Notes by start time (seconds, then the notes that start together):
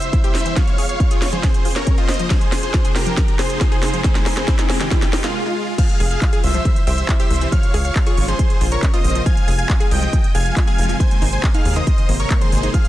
Already playing: C5 E5, riser
0.02 C3 G3 E4 C5, closed hi-hat
0.13 C3 G3 E4 C5, kick, closed hi-hat
0.24 G4 C5 E5, closed hi-hat
0.35 C3 G3 E4 C5, snare, open hi-hat
0.40 closed hi-hat
0.46 C3 E3 G3 E4 C5, closed hi-hat
0.56 C#3 F3 G#3 F4 C#5 F5, kick, snare, closed hi-hat
0.67 closed hi-hat
0.78 G#4, open hi-hat
0.89 C#3 G#3 F4 C#5 F5, closed hi-hat
1.00 C#3 G#3 F4 C#5, kick, closed hi-hat
1.11 F4 G#4 C#5, closed hi-hat
1.22 C#3 G#3 F4 C#5, snare, open hi-hat
1.33 F3 G#4 C5, closed hi-hat
1.43 F3, kick, snare, closed hi-hat
1.54 closed hi-hat
1.65 C#3 A#3 F4 C5, open hi-hat
1.76 C#3 A#3 F4 A#4 C5 C#5, snare, closed hi-hat
1.87 C#3 A#3 C#4 F4 C5, kick, closed hi-hat
1.98 F4 C5 D#5, closed hi-hat
2.09 C#3 A#3 F4 C5, snare, open hi-hat
2.14 closed hi-hat
2.19 C#3 F3 A#3 F4 C5, closed hi-hat
2.30 C3 F3 G#3 F4 G#4 C5, kick, snare, closed hi-hat
2.41 closed hi-hat
2.52 G#4, snare, open hi-hat
2.63 C3 G#3 F4 G#4 C5, closed hi-hat
2.74 C3 G#3 F4 C5, kick, snare, closed hi-hat
2.85 G#4, closed hi-hat
2.96 C3 G#3 F4 G4 A#4 C5, snare, open hi-hat
3.06 F3, closed hi-hat
3.17 F3, kick, snare, closed hi-hat
3.28 closed hi-hat
3.39 C3 G#3 F4 G#4 C5, snare, open hi-hat
3.50 C3 G#3 F4 C5, closed hi-hat
3.61 C3 G#3 F4 C5, kick, snare, closed hi-hat
3.72 G#4 C5, closed hi-hat
3.82 C3 G#3 F4 C5, snare, open hi-hat
3.88 closed hi-hat
3.93 C3 F3 G#3 F4 C5, closed hi-hat
4.04 C3 D#3 G#3 D#4 G#4 A#4 C5, kick, snare, closed hi-hat
4.15 snare, closed hi-hat
4.26 D#4, snare, open hi-hat
4.37 C3 G#3 D#4 G#4 A#4 C5, snare, closed hi-hat
4.48 C3 G#3 C4 D#4 A#4, kick, snare, closed hi-hat
4.59 C4 D#4 G#4, snare, closed hi-hat
4.70 C3 G#3 D#4 A#4, snare, open hi-hat
4.80 D#3 D#4 G4, snare, closed hi-hat
4.91 D#3, kick, snare, closed hi-hat
5.02 snare, closed hi-hat
5.13 C3 G#3 D#4 A#4, snare, open hi-hat
5.24 C3 G#3 D#4 F4 A#4, snare, closed hi-hat
5.46 G#3 F4
5.78 C3 F3 G#3 F4 G#4 F5 F6, kick, closed hi-hat, crash
5.89 closed hi-hat
6.00 F1 G#4, open hi-hat
6.11 C3 F3 G#3 F4 G#4 F5 F6, closed hi-hat
6.22 C3 F3 G#3 F4, kick, clap, closed hi-hat
6.33 G#4, closed hi-hat
6.44 C2 C3 F3 G#3 F4 C5 E5 E6, open hi-hat
6.54 F3, closed hi-hat
6.65 E3, kick, closed hi-hat
6.76 closed hi-hat
6.87 C2 C3 E3 G3 E4 G4 C5 E5 E6, open hi-hat
6.98 C3 E3 G3 E4, closed hi-hat
7.09 C3 E3 G3 E4, kick, clap, closed hi-hat
7.19 G4 C5 E5 E6, closed hi-hat
7.30 C2 C3 E3 G3 E4, open hi-hat
7.36 closed hi-hat
7.41 C3 E3 G3 E4, closed hi-hat
7.52 C#3 F3 G#3 F4 C#5 F5 F6, kick, closed hi-hat
7.63 closed hi-hat
7.74 C#2 G#4, open hi-hat
7.85 C#3 F3 G#3 F4 C#5 F5 F6, closed hi-hat
7.95 C#3 F3 G#3 F4, kick, clap, closed hi-hat
8.06 F4 G#4 C#5 C#6, closed hi-hat
8.17 G#1 C#3 F3 G#3 F4, open hi-hat
8.28 F3 G#4 C5 C6, closed hi-hat
8.39 F3, kick, closed hi-hat
8.50 closed hi-hat
8.61 A#1 C#3 A#3 C4 F4, open hi-hat
8.71 C#3 A#3 C4 F4 A#4 C#5 C#6, closed hi-hat
8.82 C#3 A#3 C4 C#4 F4, kick, clap, closed hi-hat
8.93 F4 C5 D#5 D#6, closed hi-hat
9.04 A#1 C#3 A#3 C4 F4, open hi-hat
9.10 closed hi-hat
9.15 C#3 F3 A#3 C4 F4, closed hi-hat
9.26 C3 F3 G#3 F4 F5 G#5 G#6, kick, closed hi-hat
9.37 closed hi-hat
9.48 F1 G#4, open hi-hat
9.58 C3 F3 G#3 F4 F5 G#5 G#6, closed hi-hat
9.69 C3 F3 G#3 F4, kick, clap, closed hi-hat
9.80 G#4, closed hi-hat
9.91 C2 C3 F3 G#3 F4 D#5 G5 G6, open hi-hat
10.02 F3, closed hi-hat
10.13 F3, kick, closed hi-hat
10.24 closed hi-hat
10.34 F1 C3 F3 G#3 F4 G#4 F5 G#5 G#6, open hi-hat
10.45 C3 F3 G#3 F4, closed hi-hat
10.56 C3 F3 G#3 F4, kick, clap, closed hi-hat
10.67 G#4 F5 G#5 G#6, closed hi-hat
10.78 F1 C3 F3 G#3 F4, open hi-hat
10.84 closed hi-hat
10.89 C3 F3 G#3 F4, closed hi-hat
11.00 C3 D#3 G#3 A#3 D#4 C5 G#5 G#6, kick, closed hi-hat
11.11 closed hi-hat
11.22 G#1 D#4, open hi-hat
11.33 C3 G#3 A#3 D#4 C5 G#5 G#6, closed hi-hat
11.43 C3 G#3 A#3 C4 D#4, kick, clap, closed hi-hat
11.54 D#4 G#4 F5 F6, closed hi-hat
11.65 D#2 C3 G#3 A#3 D#4, open hi-hat
11.76 D#3 C5 D#5 D#6, closed hi-hat
11.87 D#3, kick, closed hi-hat
11.98 closed hi-hat
12.09 G#1 C3 G#3 A#3 D#4, open hi-hat
12.20 C3 G#3 A#3 D#4 A#4 C#5 C#6, closed hi-hat
12.30 C3 G#3 A#3 D#4, kick, clap, closed hi-hat
12.41 D#3 G#4 C5 C6, closed hi-hat
12.52 G#1 C3 G#3 A#3 D#4, open hi-hat
12.58 closed hi-hat
12.63 C3 G#3 A#3 D#4, closed hi-hat
12.74 C3 F3 G#3 F4 G#4 F5 F6, kick, closed hi-hat
12.85 closed hi-hat